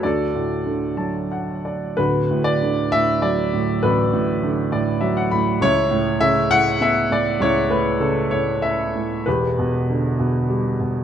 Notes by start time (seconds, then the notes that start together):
0.03 D2 F#4 A4 D5
0.35 A2
0.66 D3
0.97 F#3 A5
1.32 F#5
1.65 D5
1.97 D1 D2 F#4 B4
2.31 A2
2.44 D5
2.62 D3
2.92 A2 E5
3.22 F#3 D5
3.54 A2
3.83 A1 F#4 B4
4.13 A2
4.43 D3
4.72 A2 D5
5.01 F#3 E5
5.17 F#5
5.31 A2 B5
5.61 C#2 E4 C#5
5.91 A2
6.21 C#3 E5
6.50 A2 F#5
6.80 B3 E5
7.11 A2 D5
7.40 C#2 E4 C#5
7.69 A2 B4
8.00 C#3 A4
8.31 A2 C#5
8.62 C#4 E5
8.96 A2
9.26 E1 E2 G4 B4
9.58 B2
9.90 D3
10.19 B2
10.49 G3
10.80 B2